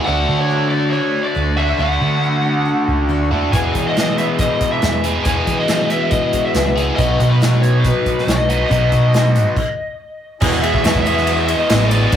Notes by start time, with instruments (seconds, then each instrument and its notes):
0.05 fingered electric bass D2, steel-string acoustic guitar D3 A3 D4 F#4, lead electric guitar F#5
0.29 fingered electric bass D3, steel-string acoustic guitar A3 D4 F#4
0.39 lead electric guitar C#5
0.50 steel-string acoustic guitar D3 A3 D4 F#4
0.69 steel-string acoustic guitar D4 F#4, lead electric guitar D5
0.74 steel-string acoustic guitar A3
0.91 steel-string acoustic guitar D3 A3, lead electric guitar C#5
0.95 steel-string acoustic guitar D4 F#4
1.14 steel-string acoustic guitar A3 D4 F#4
1.23 lead electric guitar D5
1.35 fingered electric bass D2, steel-string acoustic guitar D3 A3 D4 F#4
1.57 overdriven electric guitar D3, steel-string acoustic guitar A3 D4 F#4, lead electric guitar E5
1.78 fingered electric bass D2, steel-string acoustic guitar D3 A3 D4 F#4, lead electric guitar F#5
2.00 fingered electric bass D3, steel-string acoustic guitar A3 D4 F#4
2.23 steel-string acoustic guitar D3 A3 D4 F#4
2.44 steel-string acoustic guitar A3 D4 F#4
2.65 steel-string acoustic guitar D3 A3 D4 F#4
2.88 fingered electric bass C#2, steel-string acoustic guitar A3 D4 F#4
3.09 fingered electric bass D2, steel-string acoustic guitar D3 A3 D4 F#4
3.31 fingered electric bass E2, overdriven electric guitar D3, steel-string acoustic guitar A3 D4 F#4
3.52 steel-string acoustic guitar E2 B2 E3 G#3 B3 G#4, fingered electric bass E2, lead electric guitar G#5, kick, closed hi-hat
3.73 fingered electric bass E3, steel-string acoustic guitar G#3 B3 G#4, kick, closed hi-hat
3.88 lead electric guitar D#5
3.95 steel-string acoustic guitar E2 B2 E3 G#3 B3 G#4, snare, closed hi-hat
4.16 steel-string acoustic guitar E3 G#3 B3 G#4, lead electric guitar E5, closed hi-hat
4.38 steel-string acoustic guitar E3 G#3 B3 G#4, lead electric guitar D#5, kick, closed hi-hat
4.59 steel-string acoustic guitar E3 G#3 B3 G#4, kick, closed hi-hat
4.72 lead electric guitar E5
4.82 steel-string acoustic guitar E2 B2 E3 G#3 B3 G#4, fingered electric bass E2, snare, closed hi-hat
5.03 overdriven electric guitar E2 B2, steel-string acoustic guitar E3 G#3 B3 G#4, closed hi-hat
5.24 steel-string acoustic guitar E2 B2 E3 G#3 B3 G#4, fingered electric bass E2, lead electric guitar G#5, kick, closed hi-hat
5.47 fingered electric bass E3, steel-string acoustic guitar E3 G#3 B3 G#4, kick, closed hi-hat
5.59 lead electric guitar D#5
5.68 steel-string acoustic guitar E2 B2 E3 G#3 B3 G#4, snare, closed hi-hat
5.90 steel-string acoustic guitar E3 G#3 B3 G#4, lead electric guitar E5, closed hi-hat
6.11 steel-string acoustic guitar E3 G#3 B3 G#4, lead electric guitar D#5, kick, closed hi-hat
6.32 steel-string acoustic guitar E3 G#3 B3 G#4, kick, closed hi-hat
6.46 lead electric guitar E5
6.54 fingered electric bass C#2, steel-string acoustic guitar E2 B2 E3 G#3 B3 G#4, snare, closed hi-hat
6.74 overdriven electric guitar E2 B2, steel-string acoustic guitar E3 G#3 B3 G#4, closed hi-hat
6.96 fingered electric bass B1, steel-string acoustic guitar B2 F#3 B3 D#4 F#4, lead electric guitar D#5, kick, closed hi-hat
7.18 fingered electric bass B2, steel-string acoustic guitar B3 D#4 F#4, kick, closed hi-hat
7.30 lead electric guitar B4
7.40 steel-string acoustic guitar B2 F#3 B3 D#4 F#4, snare, closed hi-hat
7.60 steel-string acoustic guitar D#4 F#4, lead electric guitar C#5, closed hi-hat
7.65 steel-string acoustic guitar B3
7.79 lead electric guitar B4
7.84 steel-string acoustic guitar F#3 B3 D#4 F#4, kick, closed hi-hat
8.05 steel-string acoustic guitar B3 D#4 F#4, kick, closed hi-hat
8.18 lead electric guitar D#5, snare
8.26 fingered electric bass B1, steel-string acoustic guitar B2 F#3 B3 D#4 F#4, snare, closed hi-hat
8.47 overdriven electric guitar F#3, steel-string acoustic guitar B3 D#4 F#4, closed hi-hat
8.51 overdriven electric guitar B2
8.66 fingered electric bass B1, steel-string acoustic guitar B2 F#3 B3 D#4 F#4, lead electric guitar D#5
8.71 kick, closed hi-hat
8.89 fingered electric bass B2, steel-string acoustic guitar B3 D#4 F#4, kick, closed hi-hat
9.12 steel-string acoustic guitar B2 F#3 B3 D#4 F#4, snare, closed hi-hat
9.33 steel-string acoustic guitar B3 D#4 F#4, closed hi-hat
9.57 kick, crash
10.40 steel-string acoustic guitar E2 B2 F#3 G#3 B3 F#4, fingered electric bass E2, overdriven electric guitar E3 G#4, harmonium E4 F#4 G#5, upright piano E4 F#4 G#4 B4, kick, crash, tambourine
10.52 tambourine
10.61 steel-string acoustic guitar F#3 G#3 B3 F#4, overdriven electric guitar G#4, lead electric guitar E5, ride
10.65 overdriven electric guitar E3
10.74 kick
10.83 steel-string acoustic guitar E2 B2 F#3 G#3 B3 F#4, fingered electric bass E2, overdriven electric guitar E3 G#4, snare, ride, tambourine
10.95 kick
11.03 steel-string acoustic guitar G#3 B3 F#4, overdriven electric guitar G#4, lead electric guitar E5, ride, tambourine
11.08 overdriven electric guitar E3, steel-string acoustic guitar F#3
11.18 snare
11.26 steel-string acoustic guitar F#3 G#3 B3 F#4, ride, tambourine
11.37 tambourine
11.45 steel-string acoustic guitar B3 F#4, lead electric guitar D#5, ride, tambourine
11.50 steel-string acoustic guitar F#3 G#3
11.70 fingered electric bass A1, steel-string acoustic guitar E2 B2 F#3 G#3 B3 F#4, overdriven electric guitar E3 G#4, snare, ride, tambourine
11.88 steel-string acoustic guitar B3 F#4, upright piano E4 F#4, overdriven electric guitar G#4, lead electric guitar D5, ride, tambourine
11.93 overdriven electric guitar E3, steel-string acoustic guitar F#3 G#3, upright piano G#4 B4
12.11 fingered electric bass D2, steel-string acoustic guitar D3 A3, upright piano D4, harmonium F#4 D5 A5, kick, ride, tambourine